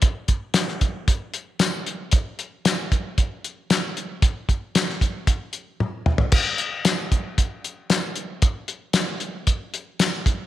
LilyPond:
\new DrumStaff \with { instrumentName = "Drums" } \drummode { \time 4/4 \tempo 4 = 114 <hh bd>8 <hh bd>8 <hh sn tamb>16 sn16 <hh bd>8 <hh bd>8 hh8 <hh sn tamb>8 hh8 | <hh bd>8 hh8 <hh sn tamb>8 <hh bd>8 <hh bd>8 hh8 <hh sn tamb>8 hh8 | <hh bd>8 <hh bd>8 <hh sn tamb>16 sn16 <hh bd>8 <hh bd>8 hh8 tommh8 toml16 tomfh16 | <cymc bd>8 hh8 <hh sn tamb>8 <hh bd>8 <hh bd>8 hh8 <hh sn tamb>8 hh8 |
<hh bd>8 hh8 <hh sn tamb>8 hh8 <hh bd>8 hh8 <hh sn tamb>8 <hh bd>8 | }